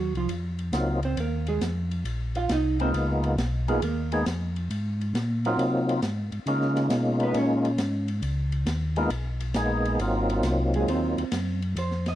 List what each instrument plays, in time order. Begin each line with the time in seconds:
Already playing: hollow-body jazz guitar F#3 F#4
0.00 tonewheel organ D#2
0.14 tonewheel organ C2, hollow-body jazz guitar F3 F4, ride
0.29 tonewheel organ F2, ride
0.59 ride
0.72 tonewheel organ C#2 F#3 A#3 C4 D#4 F4, snare, hi-hat pedal, ride
1.03 hollow-body jazz guitar C4 C5, ride
1.17 tonewheel organ D#2, hollow-body jazz guitar A#3 A#4, ride
1.46 hollow-body jazz guitar G#3 G#4, ride
1.61 tonewheel organ F2, snare, hi-hat pedal, ride
1.91 ride
2.05 tonewheel organ A#1, ride
2.35 hollow-body jazz guitar F4 F5, ride
2.49 tonewheel organ C2, hollow-body jazz guitar D#4 D#5, snare, hi-hat pedal, ride
2.80 tonewheel organ G#3 A#3 B3 D#4 F4, hollow-body jazz guitar C4 C5, ride
2.94 tonewheel organ C#2, ride
3.23 ride
3.37 tonewheel organ B1, snare, hi-hat pedal, ride
3.68 tonewheel organ G#3 A#3 B3 D#4 F4, hollow-body jazz guitar G#3 G#4, ride
3.82 tonewheel organ D#2, hollow-body jazz guitar A#3 A#4, ride
4.12 tonewheel organ G#3 A#3 B3 D#4 G#4, ride
4.26 tonewheel organ F2, snare, hi-hat pedal, ride
4.56 ride
4.70 tonewheel organ G#2, ride
5.01 ride
5.14 tonewheel organ A#2, snare, hi-hat pedal, ride
5.45 tonewheel organ F#3 A#3 C4 D#4 F4, ride
5.58 tonewheel organ C3, ride
5.89 ride
6.02 tonewheel organ G#2, snare, hi-hat pedal, ride
6.32 tonewheel organ G#2, ride
6.46 tonewheel organ C#3 G#3 A#3 C#4 D#4 F4, ride
6.62 snare
6.76 snare, ride
6.90 tonewheel organ B2, snare, hi-hat pedal, ride
7.20 hollow-body jazz guitar B3 B4, ride
7.34 tonewheel organ A#2, hollow-body jazz guitar C#4 C#5, ride
7.65 ride
7.78 tonewheel organ G#2, snare, hi-hat pedal, ride
8.08 ride
8.22 tonewheel organ C#2, ride
8.52 ride
8.66 tonewheel organ D#2, snare, hi-hat pedal, ride
8.96 tonewheel organ G#3 A#3 B3 D#4 F4, ride
9.10 tonewheel organ B1, ride
9.40 ride
9.54 tonewheel organ A#1 G#3 A#3 B3 D#4 G#4, snare, hi-hat pedal, ride
9.85 ride
9.99 tonewheel organ G#1 F#3 A#3 C4 D#4 F4, ride
10.30 ride
10.43 tonewheel organ C2, snare, hi-hat pedal, ride
10.74 hollow-body jazz guitar G#3 G#4, ride
10.88 tonewheel organ D#2, hollow-body jazz guitar C4 C5, ride
11.17 tonewheel organ D#2, ride
11.32 tonewheel organ F#2, snare, hi-hat pedal, ride
11.62 ride
11.76 tonewheel organ F2, hollow-body jazz guitar C5, ride
11.91 snare
12.06 hollow-body jazz guitar D#5, snare, ride